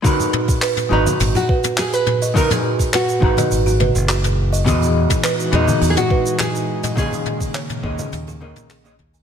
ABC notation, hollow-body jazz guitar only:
X:1
M:4/4
L:1/16
Q:1/4=104
K:G#m
V:1 name="Hollow-body jazz guitar"
[G,DFAB]6 [G,DFBa]8- [G,DFBa]2 | [G,DFAB]6 [G,DFBa]8- [G,DFBa]2 | [E,B,FGd]6 [E,B,FGd]8- [E,B,FGd]2 | [D,A,CGd]6 [D,A,CGd]4 [D,A,CGd]3 [D,A,CGd] z2 |]